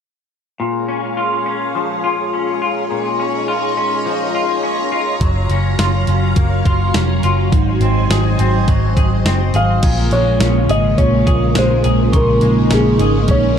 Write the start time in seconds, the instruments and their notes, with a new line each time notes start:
0.58 clean electric guitar A#2, string machine G#4 C#5 F5 A#5
0.88 clean electric guitar C#4
1.17 clean electric guitar F4
1.46 clean electric guitar C#4
1.75 clean electric guitar F3
2.04 clean electric guitar F4
2.33 clean electric guitar C#4
2.62 clean electric guitar F4
2.91 clean electric guitar A#2, string machine D#5
3.20 clean electric guitar C#4
3.48 clean electric guitar F4
3.77 clean electric guitar C#4
4.06 clean electric guitar F3
4.35 clean electric guitar F4
4.63 clean electric guitar C#4
4.92 clean electric guitar F4
5.21 picked electric bass F#1, clean electric guitar F#3, string machine F#3 F5, kick, closed hi-hat
5.49 picked electric bass F#1, clean electric guitar C#4, closed hi-hat
5.79 picked electric bass F#1, clean electric guitar F4, snare, closed hi-hat
6.07 picked electric bass F#1, clean electric guitar C#4, closed hi-hat
6.36 picked electric bass F#1, clean electric guitar A#3, kick, closed hi-hat
6.66 picked electric bass F#1, clean electric guitar F4, kick, closed hi-hat
6.94 picked electric bass F1, clean electric guitar C#4, snare, closed hi-hat
7.23 picked electric bass F#1, clean electric guitar F4, closed hi-hat
7.50 picked electric bass G#1, clean electric guitar G#2, string machine C5 D#5 G#5, kick, closed hi-hat
7.80 picked electric bass G#1, clean electric guitar C4, closed hi-hat
8.10 picked electric bass G#1, clean electric guitar G#4, snare, closed hi-hat
8.39 picked electric bass G#1, clean electric guitar C4, closed hi-hat
8.68 picked electric bass G#1, clean electric guitar F#3, kick, closed hi-hat
8.97 picked electric bass G#1, clean electric guitar G#4, kick, closed hi-hat
9.25 picked electric bass F#1, clean electric guitar C4, snare, closed hi-hat
9.54 picked electric bass G#1, clean electric guitar G#4, felt piano F5, closed hi-hat
9.83 picked electric bass A#1, clean electric guitar A#2, string machine C#3 G#3 A#3 F4, glockenspiel G#6, kick, closed hi-hat, crash
10.11 picked electric bass A#1, clean electric guitar G#3, felt piano C#5, closed hi-hat
10.40 picked electric bass A#1, clean electric guitar C#4, snare, closed hi-hat
10.68 picked electric bass G#1, clean electric guitar G#4, felt piano D#5, closed hi-hat
10.98 picked electric bass A#1, clean electric guitar C#4, felt piano C#5, kick, closed hi-hat
11.27 picked electric bass A#1, clean electric guitar G#4, kick, closed hi-hat
11.55 picked electric bass A#1, clean electric guitar G#3, felt piano C5, snare, closed hi-hat
11.84 picked electric bass A#1, clean electric guitar G#4, closed hi-hat
12.12 picked electric bass A#1, clean electric guitar A#2, string machine D#4, felt piano A#4, glockenspiel C#6, kick, closed hi-hat
12.41 picked electric bass A#1, clean electric guitar G#3, closed hi-hat
12.71 picked electric bass A#1, clean electric guitar C#4, felt piano G#4, snare, closed hi-hat
12.99 picked electric bass G#1, clean electric guitar G#4, closed hi-hat
13.28 picked electric bass A#1, clean electric guitar C#4, felt piano C#5, kick, closed hi-hat